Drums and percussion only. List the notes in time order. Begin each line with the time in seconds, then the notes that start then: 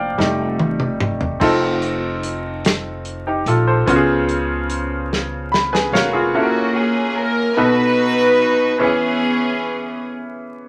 0.20 snare
0.59 high tom
0.80 mid tom
1.00 mid tom
1.21 floor tom
1.41 kick, crash
1.82 closed hi-hat
2.23 closed hi-hat
2.65 snare, closed hi-hat
3.05 closed hi-hat
3.46 closed hi-hat
3.88 kick, closed hi-hat
4.29 closed hi-hat
4.70 closed hi-hat
5.13 snare
5.54 snare
5.75 snare
5.95 snare